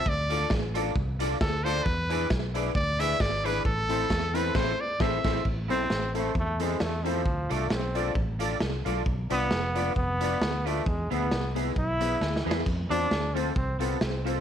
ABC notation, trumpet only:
X:1
M:4/4
L:1/8
Q:"Swing" 1/4=133
K:Am
V:1 name="Trumpet"
d2 z4 A c | B2 z2 d e d B | A3 B c d e2 | z8 |
z8 | z8 | z8 | z8 |]